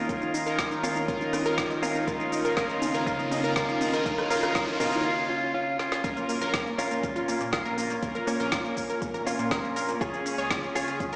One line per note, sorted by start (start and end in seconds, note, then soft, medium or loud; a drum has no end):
0.00 2.04 D#2 medium
0.00 2.04 D#3 medium
0.00 2.04 F4 medium
0.00 riser medium
0.09 0.43 D#3 medium
0.09 2.05 G#3 medium
0.09 0.74 C#4 medium
0.09 0.43 D#4 medium
0.09 0.43 F4 medium
0.09 0.74 F4 medium
0.09 0.18 A#4 medium
0.09 0.43 A#4 medium
0.09 kick loud
0.09 closed hi-hat medium
0.09 shaker soft
0.22 0.30 D#4 medium
0.22 closed hi-hat soft
0.22 shaker soft
0.34 0.43 D#4 medium
0.34 open hi-hat loud
0.34 shaker medium
0.46 1.06 D#3 medium
0.46 1.06 D#4 medium
0.46 1.06 F4 medium
0.46 0.55 A#4 medium
0.46 1.06 A#4 medium
0.46 closed hi-hat medium
0.46 shaker soft
0.59 0.68 D#4 medium
0.59 kick loud
0.59 snare loud
0.59 closed hi-hat medium
0.59 shaker soft
0.71 0.80 D#4 medium
0.71 closed hi-hat soft
0.71 shaker soft
0.83 1.06 C#4 medium
0.83 1.06 F4 medium
0.83 0.92 A#4 medium
0.83 open hi-hat loud
0.83 high conga medium
0.83 shaker medium
0.96 1.05 D#4 medium
0.96 closed hi-hat soft
0.96 shaker soft
1.08 1.43 D#3 medium
1.08 1.73 C#4 medium
1.08 1.43 D#4 medium
1.08 1.43 F4 medium
1.08 1.73 F4 medium
1.08 1.17 A#4 medium
1.08 1.43 A#4 medium
1.08 kick loud
1.08 closed hi-hat medium
1.08 shaker soft
1.21 1.30 D#4 medium
1.21 closed hi-hat soft
1.21 shaker soft
1.33 1.42 D#4 medium
1.33 cross-stick medium
1.33 open hi-hat loud
1.33 high conga medium
1.33 shaker medium
1.46 2.06 D#3 medium
1.46 2.06 D#4 medium
1.46 2.06 F4 medium
1.46 2.06 A#4 medium
1.46 1.54 A#4 loud
1.46 snare soft
1.46 closed hi-hat medium
1.46 shaker soft
1.58 1.67 D#4 medium
1.58 kick loud
1.58 snare loud
1.58 closed hi-hat medium
1.58 shaker soft
1.70 1.79 D#4 medium
1.70 closed hi-hat soft
1.70 shaker soft
1.82 2.05 C#4 medium
1.82 2.05 F4 medium
1.82 1.92 A#4 medium
1.82 open hi-hat loud
1.82 high conga medium
1.82 shaker medium
1.95 2.04 D#4 medium
1.95 closed hi-hat medium
1.95 shaker soft
2.07 5.02 F#2 medium
2.07 5.02 C#3 medium
2.07 2.42 D#3 medium
2.07 5.02 A#3 medium
2.07 2.55 C#4 medium
2.07 2.42 D#4 medium
2.07 2.42 F4 medium
2.07 2.55 F4 medium
2.07 4.04 G#4 medium
2.07 2.42 A#4 medium
2.07 2.16 A#4 medium
2.07 kick loud
2.07 closed hi-hat medium
2.07 shaker soft
2.20 2.29 D#4 medium
2.20 closed hi-hat soft
2.20 shaker soft
2.32 2.41 D#4 medium
2.32 open hi-hat loud
2.32 shaker medium
2.45 2.55 D#3 medium
2.45 2.55 D#4 medium
2.45 2.55 F4 medium
2.45 2.55 A#4 medium
2.45 2.54 A#4 medium
2.45 closed hi-hat medium
2.45 shaker soft
2.57 2.91 D#3 medium
2.57 3.05 C#4 medium
2.57 2.91 D#4 medium
2.57 2.91 F4 medium
2.57 3.05 F4 medium
2.57 2.91 A#4 medium
2.57 2.66 A#4 loud
2.57 kick loud
2.57 snare loud
2.57 closed hi-hat medium
2.57 shaker soft
2.69 2.78 D#4 medium
2.69 closed hi-hat soft
2.69 shaker soft
2.82 2.91 D#4 medium
2.82 open hi-hat loud
2.82 high conga medium
2.82 shaker medium
2.94 3.05 D#3 medium
2.94 3.05 D#4 medium
2.94 3.05 F4 medium
2.94 3.03 A#4 medium
2.94 3.05 A#4 medium
2.94 closed hi-hat medium
2.94 shaker soft
3.06 3.41 D#3 medium
3.06 3.54 C#4 medium
3.06 3.41 D#4 medium
3.06 3.54 F4 medium
3.06 3.41 F4 medium
3.06 3.16 A#4 loud
3.06 3.41 A#4 medium
3.06 kick loud
3.06 closed hi-hat medium
3.06 shaker soft
3.19 3.28 D#4 medium
3.19 closed hi-hat soft
3.19 shaker soft
3.31 3.40 D#4 medium
3.31 open hi-hat loud
3.31 high conga medium
3.31 shaker medium
3.44 3.54 D#3 medium
3.44 3.54 D#4 medium
3.44 3.54 F4 medium
3.44 3.53 A#4 loud
3.44 3.54 A#4 medium
3.44 closed hi-hat medium
3.44 shaker soft
3.56 3.91 D#3 medium
3.56 4.04 C#4 medium
3.56 3.91 D#4 medium
3.56 3.91 F4 medium
3.56 4.04 F4 medium
3.56 3.65 A#4 loud
3.56 3.91 A#4 medium
3.56 kick loud
3.56 snare loud
3.56 closed hi-hat medium
3.56 shaker soft
3.69 3.77 D#4 medium
3.69 closed hi-hat soft
3.69 shaker soft
3.81 3.90 D#4 medium
3.81 open hi-hat loud
3.81 high conga medium
3.81 shaker medium
3.93 4.04 D#3 medium
3.93 4.04 D#4 medium
3.93 4.04 F4 medium
3.93 4.02 A#4 medium
3.93 4.04 A#4 medium
3.93 closed hi-hat medium
3.93 shaker soft
4.05 4.29 D#3 medium
4.05 4.29 C#4 medium
4.05 4.29 D#4 medium
4.05 4.29 F4 medium
4.05 5.04 F#4 medium
4.05 4.15 A#4 loud
4.05 4.29 A#4 medium
4.05 kick loud
4.05 closed hi-hat medium
4.05 shaker soft
4.18 4.27 D#4 medium
4.18 cross-stick medium
4.18 closed hi-hat soft
4.18 shaker soft
4.30 4.53 D#3 medium
4.30 4.53 C#4 medium
4.30 4.53 D#4 medium
4.30 4.53 F4 medium
4.30 4.39 A#4 loud
4.30 4.53 A#4 medium
4.30 open hi-hat loud
4.30 shaker medium
4.43 4.52 D#4 medium
4.43 cross-stick medium
4.43 closed hi-hat medium
4.43 shaker soft
4.55 4.78 D#3 medium
4.55 4.78 C#4 medium
4.55 4.78 D#4 medium
4.55 4.78 F4 medium
4.55 4.64 A#4 loud
4.55 4.78 A#4 medium
4.55 kick loud
4.55 snare loud
4.55 closed hi-hat medium
4.55 shaker soft
4.68 4.77 D#4 medium
4.68 closed hi-hat soft
4.68 shaker soft
4.80 5.03 D#3 medium
4.80 5.03 C#4 medium
4.80 5.03 D#4 medium
4.80 5.03 F4 medium
4.80 5.03 F4 loud
4.80 4.89 A#4 loud
4.80 5.03 A#4 medium
4.80 mid tom medium
4.80 open hi-hat loud
4.80 high conga medium
4.80 shaker medium
4.92 5.01 D#4 medium
4.92 closed hi-hat medium
4.92 shaker soft
5.05 5.28 C#4 medium
5.05 5.28 F4 medium
5.29 5.52 C#4 medium
5.29 5.52 F4 medium
5.54 5.77 C#4 medium
5.54 5.77 F4 loud
5.79 6.02 C#4 medium
5.79 6.02 F4 medium
5.79 snare medium
5.92 snare medium
6.04 6.13 A#1 loud
6.04 6.39 A#2 medium
6.04 9.97 A#3 medium
6.04 6.69 C#4 medium
6.04 11.16 C#4 medium
6.04 6.39 C#4 medium
6.04 11.16 F4 medium
6.04 6.39 F4 medium
6.04 6.69 F4 medium
6.04 6.13 A#4 medium
6.04 6.39 A#4 medium
6.04 kick loud
6.04 closed hi-hat medium
6.04 impact medium
6.04 shaker soft
6.17 6.25 A#3 medium
6.17 closed hi-hat soft
6.17 shaker soft
6.29 6.38 A#3 medium
6.29 open hi-hat loud
6.29 shaker medium
6.41 6.73 A#1 loud
6.41 8.00 A#2 medium
6.41 8.00 C#4 medium
6.41 8.00 F4 medium
6.41 8.00 A#4 medium
6.41 6.50 A#4 loud
6.41 closed hi-hat medium
6.41 shaker soft
6.54 6.63 A#3 medium
6.54 kick loud
6.54 snare loud
6.54 closed hi-hat medium
6.54 shaker soft
6.66 6.75 A#3 medium
6.66 shaker soft
6.78 6.88 A#1 medium
6.78 7.43 C#4 medium
6.78 7.43 F4 medium
6.78 6.87 A#4 medium
6.78 open hi-hat loud
6.78 shaker medium
6.91 7.00 A#3 medium
6.91 closed hi-hat medium
6.91 shaker soft
7.03 7.12 A#3 medium
7.03 kick loud
7.03 closed hi-hat medium
7.03 shaker soft
7.16 7.34 G#1 loud
7.16 7.25 F4 medium
7.16 closed hi-hat soft
7.16 shaker soft
7.28 7.37 A#3 medium
7.28 open hi-hat loud
7.28 shaker medium
7.41 7.58 A#2 medium
7.41 7.49 A#3 medium
7.41 closed hi-hat medium
7.41 shaker soft
7.53 7.62 A#3 medium
7.53 8.18 C#4 medium
7.53 8.18 F4 medium
7.53 kick loud
7.53 snare loud
7.53 closed hi-hat medium
7.53 shaker soft
7.65 7.97 A#1 loud
7.65 7.74 A#4 loud
7.65 shaker soft
7.78 7.87 A#3 medium
7.78 open hi-hat loud
7.78 shaker medium
7.90 7.99 A#3 medium
7.90 closed hi-hat medium
7.90 shaker soft
8.02 8.12 A#1 loud
8.02 8.37 A#2 medium
8.02 8.11 A#3 medium
8.02 8.37 C#4 medium
8.02 8.37 F4 medium
8.02 8.37 A#4 medium
8.02 kick loud
8.02 closed hi-hat medium
8.02 shaker soft
8.15 8.24 A#4 medium
8.15 closed hi-hat soft
8.15 shaker soft
8.27 9.17 A#3 medium
8.27 8.36 A#3 medium
8.27 9.17 C#4 medium
8.27 open hi-hat loud
8.27 shaker medium
8.40 8.71 A#1 loud
8.40 9.98 A#2 medium
8.40 8.49 A#3 medium
8.40 9.98 C#4 medium
8.40 9.98 F4 medium
8.40 9.98 A#4 medium
8.40 closed hi-hat medium
8.40 shaker soft
8.52 8.61 F4 loud
8.52 kick loud
8.52 snare loud
8.52 closed hi-hat medium
8.52 shaker soft
8.65 8.73 A#3 medium
8.65 shaker soft
8.77 8.86 A#1 medium
8.77 8.86 A#3 medium
8.77 kick medium
8.77 open hi-hat loud
8.77 shaker medium
8.89 8.98 A#4 medium
8.89 closed hi-hat medium
8.89 shaker soft
9.02 9.11 A#3 medium
9.02 kick loud
9.02 closed hi-hat medium
9.02 shaker soft
9.14 9.32 G#1 loud
9.14 9.23 A#4 medium
9.14 closed hi-hat soft
9.14 shaker soft
9.27 9.35 A#3 medium
9.27 9.91 C#4 medium
9.27 9.91 F4 medium
9.27 open hi-hat loud
9.27 shaker medium
9.39 9.57 A#2 medium
9.39 9.48 A#3 medium
9.39 closed hi-hat medium
9.39 shaker soft
9.51 9.60 A#4 medium
9.51 kick loud
9.51 snare loud
9.51 closed hi-hat medium
9.51 shaker soft
9.64 9.95 A#1 loud
9.64 9.73 A#3 medium
9.64 shaker soft
9.76 9.85 A#4 medium
9.76 open hi-hat loud
9.76 shaker medium
9.89 9.97 A#3 medium
9.89 closed hi-hat medium
9.89 shaker soft
10.01 10.10 C#2 loud
10.01 10.35 C#3 medium
10.01 11.16 C#3 medium
10.01 10.35 C#4 medium
10.01 10.66 F4 medium
10.01 10.35 F4 medium
10.01 10.35 G#4 medium
10.01 11.16 G#4 medium
10.01 10.66 G#4 medium
10.01 10.10 C#5 loud
10.01 kick loud
10.01 closed hi-hat medium
10.01 shaker soft
10.14 10.22 C#4 medium
10.14 closed hi-hat soft
10.14 shaker soft
10.26 10.35 C#4 medium
10.26 open hi-hat loud
10.26 shaker medium
10.38 10.70 C#2 loud
10.38 11.16 C#3 medium
10.38 11.16 C#4 medium
10.38 11.16 F4 medium
10.38 11.16 G#4 medium
10.38 10.47 C#5 medium
10.38 closed hi-hat medium
10.38 shaker soft
10.51 10.59 C#4 medium
10.51 kick loud
10.51 snare loud
10.51 closed hi-hat medium
10.51 shaker soft
10.63 10.72 C#4 medium
10.63 shaker soft
10.75 10.84 C#2 medium
10.75 11.16 F4 medium
10.75 11.16 G#4 medium
10.75 10.84 C#5 medium
10.75 open hi-hat loud
10.75 shaker medium
10.88 10.97 C#4 medium
10.88 closed hi-hat medium
10.88 shaker soft
11.00 11.09 C#4 medium
11.00 kick loud
11.00 closed hi-hat medium
11.00 shaker soft
11.13 11.16 G#1 loud
11.13 11.16 A#4 loud
11.13 closed hi-hat soft